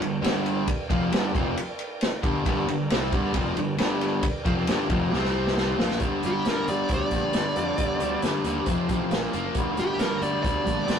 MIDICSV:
0, 0, Header, 1, 8, 480
1, 0, Start_track
1, 0, Key_signature, -2, "minor"
1, 0, Tempo, 444115
1, 726, Time_signature, 4, 2, 24, 8
1, 11880, End_track
2, 0, Start_track
2, 0, Title_t, "Lead electric guitar"
2, 0, Program_c, 0, 29
2, 6769, Note_on_c, 0, 67, 74
2, 6982, Note_off_c, 0, 67, 0
2, 7016, Note_on_c, 0, 70, 74
2, 7226, Note_off_c, 0, 70, 0
2, 7236, Note_on_c, 0, 74, 72
2, 7455, Note_off_c, 0, 74, 0
2, 7498, Note_on_c, 0, 74, 76
2, 8871, Note_off_c, 0, 74, 0
2, 10588, Note_on_c, 0, 67, 96
2, 10811, Note_off_c, 0, 67, 0
2, 10817, Note_on_c, 0, 70, 79
2, 11045, Note_off_c, 0, 70, 0
2, 11051, Note_on_c, 0, 74, 76
2, 11259, Note_off_c, 0, 74, 0
2, 11272, Note_on_c, 0, 74, 87
2, 11880, Note_off_c, 0, 74, 0
2, 11880, End_track
3, 0, Start_track
3, 0, Title_t, "Tonewheel organ"
3, 0, Program_c, 1, 16
3, 0, Note_on_c, 1, 70, 63
3, 0, Note_on_c, 1, 74, 72
3, 0, Note_on_c, 1, 79, 71
3, 2609, Note_off_c, 1, 74, 0
3, 2610, Note_off_c, 1, 70, 0
3, 2612, Note_off_c, 1, 79, 0
3, 2649, Note_on_c, 1, 74, 66
3, 2651, Note_on_c, 1, 67, 67
3, 2651, Note_on_c, 1, 70, 70
3, 5499, Note_off_c, 1, 74, 0
3, 5501, Note_off_c, 1, 67, 0
3, 5501, Note_off_c, 1, 70, 0
3, 5528, Note_on_c, 1, 67, 73
3, 5530, Note_on_c, 1, 72, 76
3, 5533, Note_on_c, 1, 60, 73
3, 6240, Note_off_c, 1, 67, 0
3, 6242, Note_off_c, 1, 72, 0
3, 6243, Note_off_c, 1, 60, 0
3, 6489, Note_on_c, 1, 71, 54
3, 6496, Note_on_c, 1, 63, 57
3, 6496, Note_on_c, 1, 68, 58
3, 6634, Note_on_c, 1, 67, 54
3, 6637, Note_on_c, 1, 62, 60
3, 6637, Note_on_c, 1, 70, 56
3, 6649, Note_off_c, 1, 71, 0
3, 6652, Note_off_c, 1, 63, 0
3, 6652, Note_off_c, 1, 68, 0
3, 9334, Note_off_c, 1, 67, 0
3, 9335, Note_off_c, 1, 62, 0
3, 9335, Note_off_c, 1, 70, 0
3, 9363, Note_on_c, 1, 72, 69
3, 9365, Note_on_c, 1, 60, 70
3, 9372, Note_on_c, 1, 65, 67
3, 9820, Note_off_c, 1, 65, 0
3, 9828, Note_on_c, 1, 58, 66
3, 9833, Note_on_c, 1, 65, 66
3, 9838, Note_on_c, 1, 70, 69
3, 9841, Note_off_c, 1, 72, 0
3, 9842, Note_off_c, 1, 60, 0
3, 10313, Note_off_c, 1, 58, 0
3, 10316, Note_off_c, 1, 65, 0
3, 10318, Note_off_c, 1, 70, 0
3, 10322, Note_on_c, 1, 68, 58
3, 10329, Note_on_c, 1, 63, 53
3, 10333, Note_on_c, 1, 71, 58
3, 10483, Note_on_c, 1, 67, 59
3, 10483, Note_on_c, 1, 70, 65
3, 10485, Note_off_c, 1, 68, 0
3, 10486, Note_on_c, 1, 62, 61
3, 10488, Note_off_c, 1, 63, 0
3, 10490, Note_off_c, 1, 71, 0
3, 11880, Note_off_c, 1, 62, 0
3, 11880, Note_off_c, 1, 67, 0
3, 11880, Note_off_c, 1, 70, 0
3, 11880, End_track
4, 0, Start_track
4, 0, Title_t, "Overdriven electric guitar"
4, 0, Program_c, 2, 29
4, 0, Note_on_c, 2, 43, 59
4, 1, Note_on_c, 2, 50, 73
4, 194, Note_off_c, 2, 43, 0
4, 195, Note_off_c, 2, 50, 0
4, 234, Note_on_c, 2, 43, 82
4, 242, Note_on_c, 2, 50, 101
4, 245, Note_on_c, 2, 55, 99
4, 714, Note_off_c, 2, 43, 0
4, 718, Note_off_c, 2, 50, 0
4, 719, Note_off_c, 2, 55, 0
4, 969, Note_on_c, 2, 41, 81
4, 976, Note_on_c, 2, 48, 85
4, 982, Note_on_c, 2, 53, 102
4, 1195, Note_off_c, 2, 41, 0
4, 1199, Note_on_c, 2, 43, 93
4, 1204, Note_off_c, 2, 48, 0
4, 1208, Note_off_c, 2, 53, 0
4, 1208, Note_on_c, 2, 50, 92
4, 1216, Note_on_c, 2, 55, 95
4, 1437, Note_off_c, 2, 43, 0
4, 1442, Note_off_c, 2, 50, 0
4, 1446, Note_off_c, 2, 55, 0
4, 1446, Note_on_c, 2, 41, 87
4, 1450, Note_on_c, 2, 48, 87
4, 1456, Note_on_c, 2, 53, 88
4, 1681, Note_off_c, 2, 41, 0
4, 1683, Note_off_c, 2, 48, 0
4, 1686, Note_off_c, 2, 53, 0
4, 2408, Note_on_c, 2, 43, 95
4, 2415, Note_on_c, 2, 50, 95
4, 2419, Note_on_c, 2, 55, 91
4, 2643, Note_off_c, 2, 43, 0
4, 2646, Note_off_c, 2, 50, 0
4, 2648, Note_off_c, 2, 55, 0
4, 2657, Note_on_c, 2, 43, 93
4, 2664, Note_on_c, 2, 50, 82
4, 2670, Note_on_c, 2, 55, 89
4, 2887, Note_off_c, 2, 43, 0
4, 2890, Note_off_c, 2, 50, 0
4, 2894, Note_off_c, 2, 55, 0
4, 2902, Note_on_c, 2, 43, 61
4, 2903, Note_on_c, 2, 50, 70
4, 3089, Note_off_c, 2, 43, 0
4, 3089, Note_off_c, 2, 50, 0
4, 3144, Note_on_c, 2, 48, 100
4, 3150, Note_on_c, 2, 55, 83
4, 3154, Note_on_c, 2, 60, 102
4, 3371, Note_off_c, 2, 48, 0
4, 3373, Note_off_c, 2, 55, 0
4, 3376, Note_off_c, 2, 60, 0
4, 3378, Note_on_c, 2, 43, 87
4, 3387, Note_on_c, 2, 50, 87
4, 3389, Note_on_c, 2, 55, 92
4, 3604, Note_off_c, 2, 43, 0
4, 3608, Note_off_c, 2, 50, 0
4, 3608, Note_on_c, 2, 41, 93
4, 3612, Note_on_c, 2, 48, 89
4, 3613, Note_off_c, 2, 55, 0
4, 3621, Note_on_c, 2, 53, 100
4, 3842, Note_off_c, 2, 41, 0
4, 3845, Note_off_c, 2, 48, 0
4, 3847, Note_on_c, 2, 43, 71
4, 3849, Note_off_c, 2, 53, 0
4, 3851, Note_on_c, 2, 50, 69
4, 4041, Note_off_c, 2, 43, 0
4, 4043, Note_off_c, 2, 50, 0
4, 4090, Note_on_c, 2, 43, 84
4, 4094, Note_on_c, 2, 50, 99
4, 4098, Note_on_c, 2, 55, 94
4, 4563, Note_off_c, 2, 43, 0
4, 4565, Note_off_c, 2, 50, 0
4, 4567, Note_off_c, 2, 55, 0
4, 4808, Note_on_c, 2, 41, 82
4, 4814, Note_on_c, 2, 48, 89
4, 4820, Note_on_c, 2, 53, 91
4, 5042, Note_off_c, 2, 41, 0
4, 5045, Note_off_c, 2, 48, 0
4, 5048, Note_off_c, 2, 53, 0
4, 5055, Note_on_c, 2, 43, 86
4, 5061, Note_on_c, 2, 50, 98
4, 5068, Note_on_c, 2, 55, 93
4, 5284, Note_off_c, 2, 43, 0
4, 5288, Note_off_c, 2, 50, 0
4, 5288, Note_on_c, 2, 41, 80
4, 5291, Note_off_c, 2, 55, 0
4, 5295, Note_on_c, 2, 48, 86
4, 5300, Note_on_c, 2, 53, 88
4, 5513, Note_off_c, 2, 48, 0
4, 5521, Note_off_c, 2, 41, 0
4, 5526, Note_on_c, 2, 48, 92
4, 5532, Note_off_c, 2, 53, 0
4, 5532, Note_on_c, 2, 55, 85
4, 5537, Note_on_c, 2, 60, 91
4, 6240, Note_off_c, 2, 48, 0
4, 6243, Note_off_c, 2, 55, 0
4, 6245, Note_off_c, 2, 60, 0
4, 6250, Note_on_c, 2, 46, 83
4, 6258, Note_on_c, 2, 53, 90
4, 6261, Note_on_c, 2, 58, 92
4, 6482, Note_off_c, 2, 46, 0
4, 6486, Note_off_c, 2, 53, 0
4, 6488, Note_off_c, 2, 58, 0
4, 6488, Note_on_c, 2, 43, 78
4, 6497, Note_on_c, 2, 55, 83
4, 6498, Note_on_c, 2, 50, 75
4, 6728, Note_off_c, 2, 43, 0
4, 6733, Note_off_c, 2, 50, 0
4, 6735, Note_off_c, 2, 55, 0
4, 6741, Note_on_c, 2, 43, 67
4, 6746, Note_on_c, 2, 50, 71
4, 6748, Note_on_c, 2, 55, 85
4, 6964, Note_off_c, 2, 43, 0
4, 6970, Note_off_c, 2, 50, 0
4, 6977, Note_off_c, 2, 55, 0
4, 6977, Note_on_c, 2, 43, 75
4, 6983, Note_on_c, 2, 50, 75
4, 6990, Note_on_c, 2, 55, 78
4, 7214, Note_off_c, 2, 43, 0
4, 7215, Note_off_c, 2, 50, 0
4, 7224, Note_off_c, 2, 55, 0
4, 7227, Note_on_c, 2, 43, 65
4, 7228, Note_on_c, 2, 50, 77
4, 7237, Note_on_c, 2, 55, 78
4, 7442, Note_off_c, 2, 43, 0
4, 7453, Note_off_c, 2, 50, 0
4, 7455, Note_off_c, 2, 55, 0
4, 7455, Note_on_c, 2, 43, 75
4, 7466, Note_on_c, 2, 50, 84
4, 7468, Note_on_c, 2, 55, 83
4, 7684, Note_off_c, 2, 43, 0
4, 7690, Note_off_c, 2, 50, 0
4, 7696, Note_off_c, 2, 55, 0
4, 7696, Note_on_c, 2, 43, 80
4, 7703, Note_on_c, 2, 50, 75
4, 7709, Note_on_c, 2, 55, 90
4, 7924, Note_off_c, 2, 43, 0
4, 7927, Note_off_c, 2, 50, 0
4, 7935, Note_off_c, 2, 55, 0
4, 7937, Note_on_c, 2, 43, 73
4, 7940, Note_on_c, 2, 50, 83
4, 7948, Note_on_c, 2, 55, 81
4, 8158, Note_off_c, 2, 43, 0
4, 8165, Note_off_c, 2, 50, 0
4, 8171, Note_off_c, 2, 55, 0
4, 8171, Note_on_c, 2, 43, 76
4, 8178, Note_on_c, 2, 50, 79
4, 8184, Note_on_c, 2, 55, 85
4, 8404, Note_off_c, 2, 43, 0
4, 8408, Note_off_c, 2, 50, 0
4, 8411, Note_off_c, 2, 55, 0
4, 8417, Note_on_c, 2, 43, 79
4, 8421, Note_on_c, 2, 50, 88
4, 8424, Note_on_c, 2, 55, 83
4, 8644, Note_off_c, 2, 43, 0
4, 8646, Note_off_c, 2, 50, 0
4, 8651, Note_off_c, 2, 55, 0
4, 8657, Note_on_c, 2, 43, 73
4, 8659, Note_on_c, 2, 50, 83
4, 8664, Note_on_c, 2, 55, 76
4, 8891, Note_off_c, 2, 43, 0
4, 8902, Note_off_c, 2, 50, 0
4, 8903, Note_off_c, 2, 55, 0
4, 8904, Note_on_c, 2, 43, 81
4, 8915, Note_on_c, 2, 50, 76
4, 8916, Note_on_c, 2, 55, 84
4, 9123, Note_off_c, 2, 43, 0
4, 9128, Note_off_c, 2, 50, 0
4, 9136, Note_on_c, 2, 43, 73
4, 9138, Note_off_c, 2, 55, 0
4, 9141, Note_on_c, 2, 50, 81
4, 9151, Note_on_c, 2, 55, 76
4, 9358, Note_off_c, 2, 43, 0
4, 9360, Note_off_c, 2, 50, 0
4, 9365, Note_off_c, 2, 55, 0
4, 9375, Note_on_c, 2, 41, 77
4, 9381, Note_on_c, 2, 48, 86
4, 9387, Note_on_c, 2, 53, 91
4, 9602, Note_off_c, 2, 41, 0
4, 9606, Note_off_c, 2, 48, 0
4, 9613, Note_off_c, 2, 53, 0
4, 9614, Note_on_c, 2, 41, 80
4, 9619, Note_on_c, 2, 48, 83
4, 9626, Note_on_c, 2, 53, 85
4, 9837, Note_off_c, 2, 41, 0
4, 9839, Note_off_c, 2, 48, 0
4, 9843, Note_off_c, 2, 53, 0
4, 9855, Note_on_c, 2, 46, 83
4, 9856, Note_on_c, 2, 53, 87
4, 9864, Note_on_c, 2, 58, 82
4, 10070, Note_off_c, 2, 46, 0
4, 10075, Note_off_c, 2, 53, 0
4, 10083, Note_on_c, 2, 46, 75
4, 10088, Note_on_c, 2, 53, 79
4, 10091, Note_off_c, 2, 58, 0
4, 10096, Note_on_c, 2, 58, 95
4, 10311, Note_off_c, 2, 46, 0
4, 10313, Note_off_c, 2, 53, 0
4, 10335, Note_on_c, 2, 43, 79
4, 10342, Note_on_c, 2, 50, 91
4, 10343, Note_on_c, 2, 55, 96
4, 10558, Note_off_c, 2, 43, 0
4, 10563, Note_off_c, 2, 50, 0
4, 10566, Note_off_c, 2, 55, 0
4, 10571, Note_on_c, 2, 43, 72
4, 10576, Note_on_c, 2, 50, 75
4, 10579, Note_on_c, 2, 55, 80
4, 10800, Note_off_c, 2, 43, 0
4, 10805, Note_off_c, 2, 50, 0
4, 10811, Note_off_c, 2, 55, 0
4, 10813, Note_on_c, 2, 43, 79
4, 10818, Note_on_c, 2, 50, 86
4, 10824, Note_on_c, 2, 55, 86
4, 11030, Note_off_c, 2, 43, 0
4, 11040, Note_off_c, 2, 50, 0
4, 11043, Note_on_c, 2, 43, 70
4, 11044, Note_off_c, 2, 55, 0
4, 11053, Note_on_c, 2, 50, 80
4, 11057, Note_on_c, 2, 55, 81
4, 11265, Note_off_c, 2, 43, 0
4, 11271, Note_off_c, 2, 50, 0
4, 11278, Note_on_c, 2, 43, 84
4, 11280, Note_off_c, 2, 55, 0
4, 11284, Note_on_c, 2, 50, 86
4, 11293, Note_on_c, 2, 55, 93
4, 11495, Note_off_c, 2, 43, 0
4, 11499, Note_off_c, 2, 50, 0
4, 11508, Note_on_c, 2, 43, 85
4, 11510, Note_off_c, 2, 55, 0
4, 11512, Note_on_c, 2, 50, 75
4, 11523, Note_on_c, 2, 55, 85
4, 11729, Note_off_c, 2, 43, 0
4, 11739, Note_off_c, 2, 50, 0
4, 11742, Note_on_c, 2, 43, 76
4, 11745, Note_off_c, 2, 55, 0
4, 11752, Note_on_c, 2, 50, 79
4, 11758, Note_on_c, 2, 55, 84
4, 11880, Note_off_c, 2, 43, 0
4, 11880, Note_off_c, 2, 50, 0
4, 11880, Note_off_c, 2, 55, 0
4, 11880, Note_off_c, 2, 58, 0
4, 11880, End_track
5, 0, Start_track
5, 0, Title_t, "Fingered electric bass"
5, 0, Program_c, 3, 33
5, 0, Note_on_c, 3, 31, 74
5, 221, Note_off_c, 3, 31, 0
5, 244, Note_on_c, 3, 31, 89
5, 692, Note_off_c, 3, 31, 0
5, 975, Note_on_c, 3, 29, 90
5, 1195, Note_off_c, 3, 29, 0
5, 1214, Note_on_c, 3, 31, 94
5, 1435, Note_off_c, 3, 31, 0
5, 1456, Note_on_c, 3, 29, 93
5, 1677, Note_off_c, 3, 29, 0
5, 2415, Note_on_c, 3, 31, 87
5, 2637, Note_off_c, 3, 31, 0
5, 2655, Note_on_c, 3, 31, 92
5, 2876, Note_off_c, 3, 31, 0
5, 2904, Note_on_c, 3, 31, 83
5, 3121, Note_off_c, 3, 31, 0
5, 3139, Note_on_c, 3, 36, 91
5, 3359, Note_off_c, 3, 36, 0
5, 3376, Note_on_c, 3, 31, 96
5, 3597, Note_off_c, 3, 31, 0
5, 3611, Note_on_c, 3, 29, 87
5, 3834, Note_off_c, 3, 29, 0
5, 3861, Note_on_c, 3, 31, 72
5, 4079, Note_off_c, 3, 31, 0
5, 4098, Note_on_c, 3, 31, 84
5, 4541, Note_off_c, 3, 31, 0
5, 4815, Note_on_c, 3, 29, 89
5, 5036, Note_off_c, 3, 29, 0
5, 5058, Note_on_c, 3, 31, 98
5, 5277, Note_off_c, 3, 31, 0
5, 5287, Note_on_c, 3, 29, 89
5, 5511, Note_off_c, 3, 29, 0
5, 5531, Note_on_c, 3, 36, 86
5, 6206, Note_off_c, 3, 36, 0
5, 6255, Note_on_c, 3, 34, 81
5, 6475, Note_off_c, 3, 34, 0
5, 6494, Note_on_c, 3, 31, 88
5, 6641, Note_off_c, 3, 31, 0
5, 6736, Note_on_c, 3, 31, 77
5, 6882, Note_off_c, 3, 31, 0
5, 6983, Note_on_c, 3, 31, 80
5, 7127, Note_off_c, 3, 31, 0
5, 7218, Note_on_c, 3, 31, 85
5, 7364, Note_off_c, 3, 31, 0
5, 7452, Note_on_c, 3, 38, 82
5, 7600, Note_off_c, 3, 38, 0
5, 7687, Note_on_c, 3, 34, 70
5, 7836, Note_off_c, 3, 34, 0
5, 7943, Note_on_c, 3, 31, 82
5, 8087, Note_off_c, 3, 31, 0
5, 8173, Note_on_c, 3, 41, 73
5, 8320, Note_off_c, 3, 41, 0
5, 8415, Note_on_c, 3, 31, 84
5, 8562, Note_off_c, 3, 31, 0
5, 8653, Note_on_c, 3, 38, 75
5, 8800, Note_off_c, 3, 38, 0
5, 8892, Note_on_c, 3, 31, 76
5, 9040, Note_off_c, 3, 31, 0
5, 9124, Note_on_c, 3, 39, 83
5, 9274, Note_off_c, 3, 39, 0
5, 9369, Note_on_c, 3, 29, 81
5, 9517, Note_off_c, 3, 29, 0
5, 9610, Note_on_c, 3, 33, 76
5, 9758, Note_off_c, 3, 33, 0
5, 9847, Note_on_c, 3, 34, 76
5, 9996, Note_off_c, 3, 34, 0
5, 10091, Note_on_c, 3, 30, 83
5, 10239, Note_off_c, 3, 30, 0
5, 10321, Note_on_c, 3, 31, 82
5, 10472, Note_off_c, 3, 31, 0
5, 10569, Note_on_c, 3, 31, 79
5, 10717, Note_off_c, 3, 31, 0
5, 10800, Note_on_c, 3, 31, 80
5, 10951, Note_off_c, 3, 31, 0
5, 11039, Note_on_c, 3, 31, 77
5, 11190, Note_off_c, 3, 31, 0
5, 11285, Note_on_c, 3, 38, 81
5, 11434, Note_off_c, 3, 38, 0
5, 11517, Note_on_c, 3, 34, 82
5, 11669, Note_off_c, 3, 34, 0
5, 11765, Note_on_c, 3, 31, 82
5, 11880, Note_off_c, 3, 31, 0
5, 11880, End_track
6, 0, Start_track
6, 0, Title_t, "Muted fingered electric bass strokes"
6, 736, Note_on_c, 9, 29, 40
6, 844, Note_off_c, 9, 29, 0
6, 4571, Note_on_c, 9, 29, 41
6, 4679, Note_off_c, 9, 29, 0
6, 11880, End_track
7, 0, Start_track
7, 0, Title_t, "Muted overdriven electric guitar strokes"
7, 727, Note_on_c, 9, 29, 53
7, 835, Note_off_c, 9, 29, 0
7, 4577, Note_on_c, 9, 29, 52
7, 4685, Note_off_c, 9, 29, 0
7, 11880, End_track
8, 0, Start_track
8, 0, Title_t, "Drums"
8, 19, Note_on_c, 9, 51, 71
8, 127, Note_off_c, 9, 51, 0
8, 263, Note_on_c, 9, 51, 86
8, 280, Note_on_c, 9, 38, 95
8, 371, Note_off_c, 9, 51, 0
8, 388, Note_off_c, 9, 38, 0
8, 496, Note_on_c, 9, 51, 64
8, 604, Note_off_c, 9, 51, 0
8, 729, Note_on_c, 9, 51, 99
8, 731, Note_on_c, 9, 36, 97
8, 838, Note_off_c, 9, 51, 0
8, 839, Note_off_c, 9, 36, 0
8, 972, Note_on_c, 9, 36, 105
8, 977, Note_on_c, 9, 51, 77
8, 1080, Note_off_c, 9, 36, 0
8, 1085, Note_off_c, 9, 51, 0
8, 1215, Note_on_c, 9, 51, 93
8, 1232, Note_on_c, 9, 38, 109
8, 1323, Note_off_c, 9, 51, 0
8, 1340, Note_off_c, 9, 38, 0
8, 1456, Note_on_c, 9, 36, 107
8, 1464, Note_on_c, 9, 51, 73
8, 1564, Note_off_c, 9, 36, 0
8, 1572, Note_off_c, 9, 51, 0
8, 1701, Note_on_c, 9, 51, 89
8, 1809, Note_off_c, 9, 51, 0
8, 1932, Note_on_c, 9, 51, 69
8, 2040, Note_off_c, 9, 51, 0
8, 2171, Note_on_c, 9, 51, 75
8, 2188, Note_on_c, 9, 38, 103
8, 2279, Note_off_c, 9, 51, 0
8, 2296, Note_off_c, 9, 38, 0
8, 2414, Note_on_c, 9, 36, 101
8, 2417, Note_on_c, 9, 51, 61
8, 2522, Note_off_c, 9, 36, 0
8, 2525, Note_off_c, 9, 51, 0
8, 2654, Note_on_c, 9, 36, 102
8, 2659, Note_on_c, 9, 51, 90
8, 2762, Note_off_c, 9, 36, 0
8, 2767, Note_off_c, 9, 51, 0
8, 2901, Note_on_c, 9, 51, 68
8, 3009, Note_off_c, 9, 51, 0
8, 3137, Note_on_c, 9, 51, 81
8, 3155, Note_on_c, 9, 38, 109
8, 3246, Note_off_c, 9, 51, 0
8, 3263, Note_off_c, 9, 38, 0
8, 3376, Note_on_c, 9, 36, 107
8, 3377, Note_on_c, 9, 51, 65
8, 3484, Note_off_c, 9, 36, 0
8, 3485, Note_off_c, 9, 51, 0
8, 3608, Note_on_c, 9, 51, 90
8, 3614, Note_on_c, 9, 36, 88
8, 3716, Note_off_c, 9, 51, 0
8, 3722, Note_off_c, 9, 36, 0
8, 3854, Note_on_c, 9, 51, 69
8, 3963, Note_off_c, 9, 51, 0
8, 4089, Note_on_c, 9, 51, 86
8, 4107, Note_on_c, 9, 38, 92
8, 4197, Note_off_c, 9, 51, 0
8, 4215, Note_off_c, 9, 38, 0
8, 4336, Note_on_c, 9, 51, 72
8, 4444, Note_off_c, 9, 51, 0
8, 4569, Note_on_c, 9, 51, 94
8, 4573, Note_on_c, 9, 36, 100
8, 4677, Note_off_c, 9, 51, 0
8, 4681, Note_off_c, 9, 36, 0
8, 4814, Note_on_c, 9, 36, 102
8, 4817, Note_on_c, 9, 51, 71
8, 4922, Note_off_c, 9, 36, 0
8, 4925, Note_off_c, 9, 51, 0
8, 5049, Note_on_c, 9, 51, 92
8, 5066, Note_on_c, 9, 38, 101
8, 5157, Note_off_c, 9, 51, 0
8, 5175, Note_off_c, 9, 38, 0
8, 5292, Note_on_c, 9, 51, 72
8, 5293, Note_on_c, 9, 36, 110
8, 5400, Note_off_c, 9, 51, 0
8, 5401, Note_off_c, 9, 36, 0
8, 5546, Note_on_c, 9, 38, 54
8, 5654, Note_off_c, 9, 38, 0
8, 5670, Note_on_c, 9, 38, 54
8, 5778, Note_off_c, 9, 38, 0
8, 5912, Note_on_c, 9, 38, 67
8, 6020, Note_off_c, 9, 38, 0
8, 6020, Note_on_c, 9, 38, 82
8, 6128, Note_off_c, 9, 38, 0
8, 6264, Note_on_c, 9, 38, 91
8, 6372, Note_off_c, 9, 38, 0
8, 6382, Note_on_c, 9, 38, 79
8, 6482, Note_on_c, 9, 42, 69
8, 6488, Note_on_c, 9, 36, 95
8, 6490, Note_off_c, 9, 38, 0
8, 6590, Note_off_c, 9, 42, 0
8, 6596, Note_off_c, 9, 36, 0
8, 6730, Note_on_c, 9, 42, 53
8, 6838, Note_off_c, 9, 42, 0
8, 6970, Note_on_c, 9, 42, 69
8, 6987, Note_on_c, 9, 38, 92
8, 7078, Note_off_c, 9, 42, 0
8, 7095, Note_off_c, 9, 38, 0
8, 7215, Note_on_c, 9, 42, 54
8, 7323, Note_off_c, 9, 42, 0
8, 7442, Note_on_c, 9, 42, 71
8, 7452, Note_on_c, 9, 36, 96
8, 7550, Note_off_c, 9, 42, 0
8, 7560, Note_off_c, 9, 36, 0
8, 7681, Note_on_c, 9, 42, 58
8, 7690, Note_on_c, 9, 36, 71
8, 7789, Note_off_c, 9, 42, 0
8, 7798, Note_off_c, 9, 36, 0
8, 7922, Note_on_c, 9, 42, 75
8, 7939, Note_on_c, 9, 38, 92
8, 8030, Note_off_c, 9, 42, 0
8, 8047, Note_off_c, 9, 38, 0
8, 8168, Note_on_c, 9, 42, 57
8, 8276, Note_off_c, 9, 42, 0
8, 8406, Note_on_c, 9, 42, 84
8, 8413, Note_on_c, 9, 36, 92
8, 8514, Note_off_c, 9, 42, 0
8, 8521, Note_off_c, 9, 36, 0
8, 8647, Note_on_c, 9, 42, 64
8, 8755, Note_off_c, 9, 42, 0
8, 8885, Note_on_c, 9, 42, 83
8, 8903, Note_on_c, 9, 38, 95
8, 8993, Note_off_c, 9, 42, 0
8, 9011, Note_off_c, 9, 38, 0
8, 9124, Note_on_c, 9, 42, 61
8, 9232, Note_off_c, 9, 42, 0
8, 9358, Note_on_c, 9, 42, 77
8, 9368, Note_on_c, 9, 36, 93
8, 9466, Note_off_c, 9, 42, 0
8, 9476, Note_off_c, 9, 36, 0
8, 9606, Note_on_c, 9, 42, 61
8, 9610, Note_on_c, 9, 36, 76
8, 9714, Note_off_c, 9, 42, 0
8, 9718, Note_off_c, 9, 36, 0
8, 9844, Note_on_c, 9, 42, 65
8, 9862, Note_on_c, 9, 38, 97
8, 9952, Note_off_c, 9, 42, 0
8, 9970, Note_off_c, 9, 38, 0
8, 10085, Note_on_c, 9, 42, 59
8, 10193, Note_off_c, 9, 42, 0
8, 10317, Note_on_c, 9, 42, 78
8, 10325, Note_on_c, 9, 36, 100
8, 10425, Note_off_c, 9, 42, 0
8, 10433, Note_off_c, 9, 36, 0
8, 10559, Note_on_c, 9, 42, 54
8, 10667, Note_off_c, 9, 42, 0
8, 10797, Note_on_c, 9, 42, 73
8, 10814, Note_on_c, 9, 38, 99
8, 10905, Note_off_c, 9, 42, 0
8, 10922, Note_off_c, 9, 38, 0
8, 11044, Note_on_c, 9, 42, 56
8, 11152, Note_off_c, 9, 42, 0
8, 11285, Note_on_c, 9, 42, 67
8, 11286, Note_on_c, 9, 36, 97
8, 11393, Note_off_c, 9, 42, 0
8, 11394, Note_off_c, 9, 36, 0
8, 11524, Note_on_c, 9, 36, 69
8, 11526, Note_on_c, 9, 42, 59
8, 11632, Note_off_c, 9, 36, 0
8, 11634, Note_off_c, 9, 42, 0
8, 11758, Note_on_c, 9, 42, 68
8, 11775, Note_on_c, 9, 38, 87
8, 11866, Note_off_c, 9, 42, 0
8, 11880, Note_off_c, 9, 38, 0
8, 11880, End_track
0, 0, End_of_file